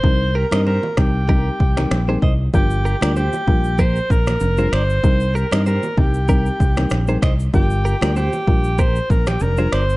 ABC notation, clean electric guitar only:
X:1
M:4/4
L:1/16
Q:"Swing 16ths" 1/4=96
K:Cm
V:1 name="Clean electric guitar"
z2 [GB] [ce] [Gc]2 z2 [GB]2 z3 [Ac] [ce] z | z2 [GB] [Bd] [Gc]2 z2 [GB]2 z3 [Ac] [Bd] z | z2 [GB] [ce] [Gc]2 z2 [GB]2 z3 [Ac] [ce] z | z2 [GB] [Bd] [Gc]2 z2 [GB]2 z3 [Ac] [Bd] z |]